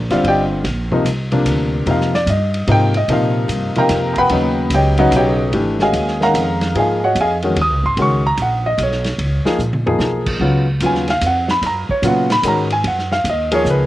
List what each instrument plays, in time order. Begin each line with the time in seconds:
0.10 upright bass F1, grand piano D3 G3 C4 F4 C5 D5 F5, snare, ride
0.24 upright bass G1, ride
0.28 grand piano G4 D5 D#5 G5
0.64 upright bass A#1, snare, ride
0.92 grand piano C3 F3 A#3 D#4, kick
1.05 upright bass C2, hi-hat pedal, ride
1.32 grand piano C3 F3 A#3 D4, ride
1.46 upright bass D2, hi-hat pedal, ride
1.86 upright bass F2, grand piano C3 F3 A#3 D#4, ride
1.91 grand piano F5
2.01 snare
2.14 grand piano D5, snare
2.26 upright bass G2, grand piano D#5, hi-hat pedal, ride
2.54 ride
2.67 upright bass G#2, grand piano C3 F3 A#3 D#4, ride
2.72 grand piano G5
2.94 grand piano D#5, ride
3.08 upright bass A#2, grand piano C3 F3 A#3 D#4, ride
3.13 grand piano F5
3.48 upright bass G2, hi-hat pedal, ride
3.75 grand piano C3 F3 A#3 D#4 A#4 F5 G5 A#5, muted upright bass stroke, ride
3.89 upright bass F2, snare, hi-hat pedal, ride
4.14 grand piano A#5, kick, ride
4.18 grand piano B4 F#5 G5 B5
4.29 upright bass D#2, grand piano C#3 F#3 B3 D#4, ride
4.70 upright bass C#2, hi-hat pedal, ride
4.74 grand piano G4 C#5 D#5 G5
4.97 grand piano C#3 F#3 B3 D#4 F#4 C#5 D#5 F#5, ride
5.11 upright bass B1, hi-hat pedal, ride
5.16 grand piano G4 C#5 D#5 G5
5.52 upright bass G#1, grand piano E3 A3 D4 G4, ride
5.79 grand piano D#3 G#3 C#4 F#4 G#4 D#5 F5 G#5, snare
5.93 upright bass D#2, hi-hat pedal, ride
6.08 snare
6.20 grand piano D#3 G#3 C#4 D#4 A#4 F5 F#5 A#5, snare
6.34 upright bass F2, hi-hat pedal, ride
6.61 snare, ride
6.75 upright bass G#2, grand piano F3 A#3 D#4 G#4, ride
6.79 grand piano G#4 D#5 F5 G#5
7.04 grand piano F#4 C#5 D#5 F#5
7.15 upright bass F2, hi-hat pedal, ride
7.21 grand piano G#4 D#5 F5 G#5
7.42 grand piano D#3 G#3 C#4 F#4, ride
7.56 upright bass D#2, ride
7.61 grand piano D#6
7.70 upright bass C#2
7.83 upright bass G#1, grand piano C6
7.97 upright bass C#2, grand piano D#3 G#3 C#4 F#4, ride
8.02 grand piano C#6
8.27 grand piano A#5
8.37 upright bass A#1, hi-hat pedal, ride
8.42 grand piano F#5
8.66 grand piano D#5
8.78 upright bass B1, hi-hat pedal, ride
8.83 grand piano C#5
8.92 snare
9.04 snare, ride
9.18 upright bass C#2, ride
9.45 grand piano F3 A#3 D#4 G#4, muted upright bass stroke, snare
9.59 upright bass A#1, hi-hat pedal
9.73 mid tom
9.86 grand piano F3 A#3 D#4 G#4, floor tom
9.99 upright bass B1, snare
10.26 kick, crash
10.40 upright bass C#2, grand piano C#3 F#3 B3 F4
10.80 upright bass D#2, grand piano C#3 F#3 B3 F4, hi-hat pedal, ride
10.86 grand piano G#5
10.95 snare
11.08 grand piano F5, snare, ride
11.21 upright bass F2, hi-hat pedal, ride
11.26 grand piano F#5
11.48 grand piano B5, snare
11.62 upright bass F#2, snare, ride
11.67 grand piano A#5
11.89 grand piano C#5, muted upright bass stroke, kick
12.02 upright bass A#2, grand piano C#3 F#3 B3 F4, hi-hat pedal, ride
12.07 grand piano F#5
12.30 grand piano B5, snare, ride
12.43 upright bass G#2, grand piano D#3 G#3 C#4 F#4, hi-hat pedal, ride
12.48 grand piano A#5
12.70 grand piano G#5, ride
12.84 upright bass F#2, grand piano F#5, ride
12.99 snare
13.12 grand piano F5, snare
13.24 upright bass D#2, hi-hat pedal, ride
13.30 grand piano D#5
13.52 grand piano F3 A#3 D#4 G#4 C#5, ride
13.65 upright bass C#2, hi-hat pedal
13.70 grand piano B4